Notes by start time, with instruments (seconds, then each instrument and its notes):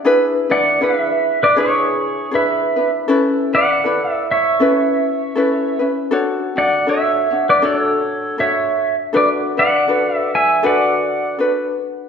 0.05 ukulele D4 E4 G#4 B4
0.50 ukulele D4 E4 B4, pedal steel guitar D5 F#5
0.80 ukulele D4 E4 G#4 B4, pedal steel guitar B4 F5
1.01 pedal steel guitar E5
1.43 pedal steel guitar B4 D5
1.56 ukulele D4 E4 G#4 B4, pedal steel guitar G#4
1.60 pedal steel guitar C#5
2.31 ukulele D4 E4 G#4 B4, pedal steel guitar E5
2.35 pedal steel guitar B4
2.76 ukulele D4 E4 B4
3.08 ukulele C#4 E4 A4 B4
3.53 ukulele E4 B4, pedal steel guitar D5 F#5
3.84 ukulele E4 A4 B4
4.12 pedal steel guitar E5
4.31 pedal steel guitar C#5 E5
4.60 ukulele C#4 E4 A4 B4
5.35 ukulele C#4 E4 A4 B4
5.79 ukulele C#4 E4 B4
6.11 ukulele D4 F#4 A4 C#5
6.56 ukulele D4 F#4, pedal steel guitar D5 F#5
6.87 ukulele D4 F#4 A4 C#5, pedal steel guitar C#5 E5
7.30 ukulele D4 F#4 C#5
7.49 pedal steel guitar B4 D5
7.62 ukulele D4 F#4 A4 C#5, pedal steel guitar A4 D5
7.77 pedal steel guitar C#5
8.38 ukulele D4 F#4 A4 C#5, pedal steel guitar C#5 E5
9.13 ukulele D4 F#4 A4 B4, pedal steel guitar B4 D5
9.57 ukulele D4 F#4 B4, pedal steel guitar D5 F#5
9.88 ukulele D4 F#4 A4 B4
10.15 pedal steel guitar E5
10.35 pedal steel guitar E5 G#5
10.63 ukulele D4 F#4 A4 B4, pedal steel guitar F#5
10.67 pedal steel guitar D5
11.38 ukulele D4 F#4 A4 B4